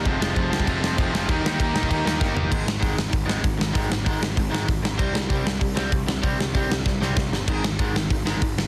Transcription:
<<
  \new Staff \with { instrumentName = "Overdriven electric guitar" } { \clef bass \time 4/4 \key aes \lydian \tempo 4 = 194 <f aes c' f'>8 <f aes c' f'>8 <f aes c' f'>8 <f aes c' f'>8 <f aes c' f'>8 <f aes c' f'>8 <f aes c' f'>8 <f aes c' f'>8 | <ees bes ees' g'>8 <ees bes ees' g'>8 <ees bes ees' g'>8 <ees bes ees' g'>8 <ees bes ees' g'>8 <ees bes ees' g'>8 <ees bes ees' g'>8 <ees bes ees' g'>8 | <aes, ees aes>8 <aes, ees>8 <aes, ees aes>8 <aes, ees>8 <aes, ees>8 <aes, ees aes>8 <aes, ees>8 <aes, ees>8 | <aes, ees aes>8 <aes, ees>8 <aes, ees aes>8 <aes, ees>8 <aes, ees>8 <aes, ees aes>8 <aes, ees>8 <aes, ees>8 |
<c g c'>8 <c g>8 <c g c'>8 <c g>8 <c g>8 <c g c'>8 <c g>8 <c g>8 | <c g c'>8 <c g>8 <c g c'>8 <c g>8 <c g>8 <c g c'>8 <c g>8 <c g>8 | <aes, ees aes>8 <aes, ees>8 <aes, ees aes>8 <aes, ees>8 <aes, ees>8 <aes, ees aes>8 <aes, ees>8 <aes, ees>8 | }
  \new Staff \with { instrumentName = "Distorted electric guitar" } { \clef bass \time 4/4 \key aes \lydian <f, c f>8 <f, c f>8 <f, c f>8 <f, c f>8 <f, c f>8 <f, c f>8 <f, c f>8 <f, c f>8 | <ees bes ees'>8 <ees bes ees'>8 <ees bes ees'>8 <ees bes ees'>8 <ees bes ees'>8 <ees bes ees'>8 <ees bes ees'>8 <ees bes ees'>8 | r1 | r1 |
r1 | r1 | r1 | }
  \new Staff \with { instrumentName = "Picked electric bass" } { \clef bass \time 4/4 \key aes \lydian f,,8 f,,8 f,,8 c,8 f,,8 f,,8 f,,4 | ees,8 ees,8 ees,8 bes,8 ees,8 ees,8 g,,4 | aes,,8 aes,,8 aes,,8 aes,,8 aes,,8 aes,,8 aes,,8 aes,,8 | aes,,8 aes,,8 aes,,8 aes,,8 aes,,8 aes,,8 aes,,8 aes,,8 |
c,8 c,8 c,8 c,8 c,8 c,8 c,8 c,8 | c,8 c,8 c,8 c,8 c,8 c,8 c,8 g,,8 | aes,,8 aes,,8 aes,,8 aes,,8 aes,,8 aes,,8 aes,,8 aes,,8 | }
  \new DrumStaff \with { instrumentName = "Drums" } \drummode { \time 4/4 <cymc bd>8 sn8 <cymc bd>8 sn16 bd16 <cymc bd>8 sn8 <cymc bd>8 sn8 | <cymc bd>8 sn8 <cymc bd>8 sn16 bd16 <cymc bd>8 sn8 <bd sn>8 tomfh8 | <cymc bd>8 sn8 <hho bd>8 sn8 <hho bd>8 sn8 <hho bd>8 sn8 | <hho bd>8 sn8 <hho bd>8 sn8 <hho bd>8 sn8 <hho bd>8 sn8 |
<cymc bd>8 sn8 <hho bd>8 sn8 <hho bd>8 sn8 <hho bd>8 sn8 | <hho bd>8 sn8 <hho bd>8 sn8 <bd sn>8 sn8 <bd sn>8 sn8 | <cymc bd>8 sn8 <hho bd>8 sn8 <hho bd>8 sn8 <hho bd>8 sn8 | }
>>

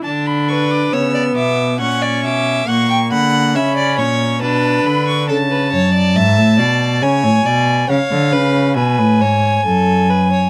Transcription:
<<
  \new Staff \with { instrumentName = "Violin" } { \time 3/4 \key b \minor \tempo 4 = 69 a''16 b''16 cis'''16 d'''16 e'''8 d'''8 cis'''8 d'''8 | cis'''8 b''8 b''8 cis'''8 a''8 b''16 cis'''16 | a''2 gis''4 | eis''4 gis''2 | }
  \new Staff \with { instrumentName = "Violin" } { \time 3/4 \key b \minor r8 b'8 cis''16 d''16 e''8 fis''16 d''16 e''8 | fis''16 g''16 fis''8 e''16 d''16 cis''8 b'4 | a'16 b'16 cis''16 d''16 e''8 d''8 cis''8 d''8 | cis''8 b'8 b'8 cis''8 a'8 b'16 cis''16 | }
  \new Staff \with { instrumentName = "Viola" } { \time 3/4 \key b \minor d'4 b4 cis'4 | ais4 cis'4 d'4 | r2. | r2. | }
  \new Staff \with { instrumentName = "Cello" } { \clef bass \time 3/4 \key b \minor d4 cis8 b,8 ais,8 b,8 | ais,8 d8 cis8 ais,8 b,8 d8 | cis8 fis,8 gis,16 a,16 b,8 cis16 a,16 b,8 | cis16 d16 cis8 b,16 a,16 gis,8 fis,4 | }
>>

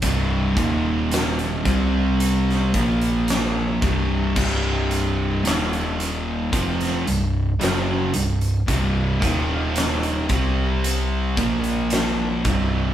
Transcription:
<<
  \new Staff \with { instrumentName = "Distorted electric guitar" } { \clef bass \time 4/4 \key c \minor \tempo 4 = 56 <c, g, c>8 <ees, bes, ees>4 <c g c'>4 <bes, f bes>4 <c, g, c>8 | <c, g, c>4 <ees, bes, ees>4 <f, c f>8 <c, g,>8 <fis, des fis>8 <c, g,>8 | <c, g, c>8 <ees, bes, ees>4 <c g c'>4 <bes, f bes>4 <c, g, c>8 | }
  \new Staff \with { instrumentName = "Distorted electric guitar" } { \clef bass \time 4/4 \key c \minor <c, g, c>8 <ees, bes, ees>4 <c g c'>4 <bes, f bes>4 <c, g, c>8 | <c, g, c>4 <ees, bes, ees>4 <f, c f>8 <c, g,>8 <fis, des fis>8 <c, g,>8 | <c, g, c>8 <ees, bes, ees>4 <c g c'>4 <bes, f bes>4 <c, g, c>8 | }
  \new Staff \with { instrumentName = "Overdriven electric guitar" } { \clef bass \time 4/4 \key c \minor <c, g, c>8 <ees, bes, ees>4 <c g c'>4 <bes, f bes>4 <c, g, c>8 | <c, g, c>4 <ees, bes, ees>4 <f, c f>8 <c, g,>8 <fis, des fis>8 <c, g,>8 | <c, g, c>8 <ees, bes, ees>4 <c g c'>4 <bes, f bes>4 <c, g, c>8 | }
  \new Staff \with { instrumentName = "Picked electric bass" } { \clef bass \time 4/4 \key c \minor c,,8 ees,,4 c,4 bes,,4 c,,8 | c,,4 ees,,4 f,,8 c,,8 fis,,8 c,,8 | c,,8 ees,,4 c,4 bes,,4 c,,8 | }
  \new DrumStaff \with { instrumentName = "Drums" } \drummode { \time 4/4 <hh bd>8 <hh bd>8 <hh sn>16 hh16 <hh bd>8 hh16 sn16 <hh bd>16 hh16 <hh sn>8 <hh bd>8 | <cymc bd>8 hh8 <hh sn>16 hh16 hh8 <hh bd>16 <hh sn>16 hh8 <hh sn>8 hh16 hh16 | <hh bd>8 <hh bd>8 <hh sn>16 hh16 <hh bd>8 hh8 <hh bd>16 hh16 <hh sn>8 <hh bd>8 | }
>>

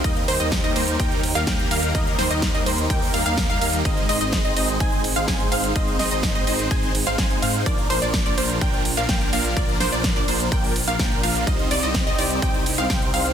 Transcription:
<<
  \new Staff \with { instrumentName = "Synth pluck" } { \time 4/4 \key ees \major \tempo 4 = 126 ees''8 c''16 ees''8 ees''16 c''8 g''8 r16 f''16 g''8 f''8 | ees''8 c''16 ees''8 ees''16 c''8 g''8 f''16 f''8 f''16 f''8 | ees''8 ees''16 ees''8 ees''16 ees''8 aes''8 r16 f''16 aes''8 f''8 | ees''8 ees''16 ees''8 ees''16 ees''8 aes''8 r16 f''16 aes''8 f''8 |
d''8 c''16 d''8 d''16 c''8 g''8 r16 f''16 g''8 f''8 | d''8 c''16 d''8 d''16 c''8 g''8 r16 f''16 g''8 f''8 | ees''8 d''16 ees''8 ees''16 d''8 g''8 r16 f''16 g''8 f''8 | }
  \new Staff \with { instrumentName = "Supersaw synth" } { \time 4/4 \key ees \major <g bes ees' bes' ees''>8 <g bes ees' bes' c''>16 <g bes ees' bes' ees''>8 <g bes ees' bes' ees''>16 <g bes ees' bes' c''>8 <g bes ees' bes' g''>8 r16 <g bes ees' bes' f''>16 <g bes ees' bes' g''>8 <g bes ees' bes' f''>8 | <g bes ees' bes' ees''>8 <g bes ees' bes' c''>16 <g bes ees' bes' ees''>8 <g bes ees' bes' ees''>16 <g bes ees' bes' c''>8 <g bes ees' bes' g''>8 <g bes ees' bes' f''>16 <g bes ees' bes' f''>8 <g bes ees' bes' f''>16 <g bes ees' bes' f''>8 | <aes c' ees' c'' ees''>8 <aes c' ees' c'' ees''>16 <aes c' ees' c'' ees''>8 <aes c' ees' c'' ees''>16 <aes c' ees' c'' ees''>8 <aes c' ees' c'' aes''>8 r16 <aes c' ees' c'' f''>16 <aes c' ees' c'' aes''>8 <aes c' ees' c'' f''>8 | <aes c' ees' c'' ees''>8 <aes c' ees' c'' ees''>16 <aes c' ees' c'' ees''>8 <aes c' ees' c'' ees''>16 <aes c' ees' c'' ees''>8 <aes c' ees' c'' aes''>8 r16 <aes c' ees' c'' f''>16 <aes c' ees' c'' aes''>8 <aes c' ees' c'' f''>8 |
<f bes d' bes' d''>8 <f bes d' bes' c''>16 <f bes d' bes' d''>8 <f bes d' bes' d''>16 <f bes d' bes' c''>8 <f bes d' bes' g''>8 r16 <f bes d' bes' f''>16 <f bes d' bes' g''>8 <f bes d' bes' f''>8 | <f bes d' bes' d''>8 <f bes d' bes' c''>16 <f bes d' bes' d''>8 <f bes d' bes' d''>16 <f bes d' bes' c''>8 <f bes d' bes' g''>8 r16 <f bes d' bes' f''>16 <f bes d' bes' g''>8 <f bes d' bes' f''>8 | <g c' ees' c'' ees''>8 <g c' ees' c'' d''>16 <g c' ees' c'' ees''>8 <g c' ees' c'' ees''>16 <g c' ees' c'' d''>8 <g c' ees' c'' g''>8 r16 <g c' ees' c'' f''>16 <g c' ees' c'' g''>8 <g c' ees' c'' f''>8 | }
  \new Staff \with { instrumentName = "Analog synth pad" } { \time 4/4 \key ees \major <ees ees' g' bes'>1~ | <ees ees' g' bes'>1 | <aes c'>1~ | <aes c'>1 |
<f bes d'>1~ | <f bes d'>1 | <c c' ees' g'>1 | }
  \new Staff \with { instrumentName = "Detuned saw bass" } { \clef bass \time 4/4 \key ees \major ees,8 ees,16 ees,8 ees,16 ees,8 ees,8. ees,16 ees,8 ees,8 | ees,8 ees,16 ees,8 ees,16 ees,8 ees,8 ees,16 ees,8 ees,16 ees,8 | aes,,8 aes,,16 aes,,8 aes,,16 aes,,8 aes,,8. aes,,16 aes,,8 aes,,8 | aes,,8 aes,,16 aes,,8 aes,,16 aes,,8 aes,,8. aes,,16 aes,,8 aes,8 |
bes,,8 bes,,16 bes,,8 bes,,16 bes,,8 bes,,8. bes,,16 bes,,8 bes,,8 | bes,,8 bes,,16 bes,,8 bes,,16 bes,,8 bes,,8. bes,,16 bes,,8 bes,,8 | c,8 c,16 c,8 c,16 c,8 c,8. c,16 c,8 c,8 | }
  \new DrumStaff \with { instrumentName = "Drums" } \drummode { \time 4/4 <hh bd cymr>16 hh16 <hho cymr>16 hh16 <hh bd cymr sn>16 hh16 <hho cymr>16 hh16 <hh bd cymr>16 hh16 <hho cymr>16 hh16 <hh bd cymr sn>16 hh16 <hho cymr>16 hh16 | <hh bd cymr>16 hh16 <hho cymr sn>16 hh16 <hh bd cymr sn>16 hh16 <hho cymr>16 hh16 <hh bd cymr>16 hho16 <hho cymr>16 hh16 <hh bd cymr sn>16 hh16 <hho cymr>16 hh16 | <hh bd cymr>16 hh16 <hho cymr>16 hh16 <hh bd cymr sn>16 hh16 <hho cymr>16 hh16 <hh bd cymr>16 hh16 <hho cymr>16 hh16 <hh bd cymr sn>16 hh16 <hho cymr>16 hh16 | <hh bd cymr>16 hh16 <hho cymr sn>16 hh16 <hh bd cymr sn>16 hh16 <hho cymr>16 hh16 <hh bd cymr>16 hh16 <hho cymr>16 hh16 <hh bd cymr sn>16 hh16 <hho cymr>16 hh16 |
<hh bd cymr>16 hh16 <hho cymr>16 hh16 <hh bd cymr sn>16 hh16 <hho cymr>16 hh16 <hh bd cymr>16 hh16 <hho cymr>16 hh16 <hh bd cymr sn>16 hh16 <hho cymr>16 hh16 | <hh bd cymr>16 hh16 <hho cymr sn>16 hh16 <hh bd cymr sn>16 hh16 <hho cymr>16 hh16 <hh bd cymr>16 hho16 <hho cymr>16 hh16 <hh bd cymr sn>16 hh16 <hho cymr>16 hh16 | <hh bd cymr>16 hh16 <hho cymr>16 hh16 <hh bd cymr sn>16 hh16 <hho cymr>16 hh16 <hh bd cymr>16 hh16 <hho cymr>16 hh16 <hh bd cymr sn>16 hh16 <hho cymr>16 hh16 | }
>>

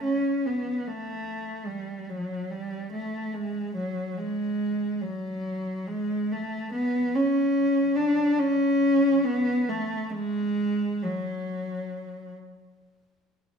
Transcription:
\new Staff \with { instrumentName = "Cello" } { \time 4/4 \key fis \minor \tempo 4 = 70 cis'8 b8 a4 g8 fis8 g8 a8 | gis8 fis8 gis4 fis4 gis8 a8 | b8 cis'4 d'8 cis'4 b8 a8 | gis4 fis4. r4. | }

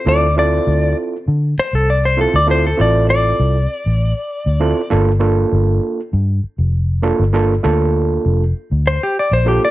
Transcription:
<<
  \new Staff \with { instrumentName = "Electric slide guitar" } { \time 4/4 \key d \minor \tempo 4 = 99 d''8 d''4 r4 c''16 a'16 d''16 c''16 a'16 d''16 | c''16 a'16 d''8 d''2. | r1 | r2 r8 c''16 g'16 d''16 c''16 g'16 d''16 | }
  \new Staff \with { instrumentName = "Reed electric piano" } { \time 4/4 \key d \minor <c' e' f' a'>8 <c' e' f' a'>4. r4. <c' e' f' a'>8 | <c' e' f' a'>8 <c' e' f' a'>4. r4. <c' e' f' a'>8 | <bes d' f' a'>8 <bes d' f' a'>4. r4. <bes d' f' a'>8 | <bes d' f' a'>8 <bes d' f' a'>4. r4. <bes d' f' a'>8 | }
  \new Staff \with { instrumentName = "Fingered electric bass" } { \clef bass \time 4/4 \key d \minor d,4 d,8 r8 d8 r16 c,4 d,16~ | d,8 a,,4 c,8 r16 a,,8 r8 d,8 r16 | g,,4 g,,8 r8 g,8 r16 f,,4 g,,16~ | g,,8 d,4 f,,8 r16 d,8 r8 bes,,8 r16 | }
>>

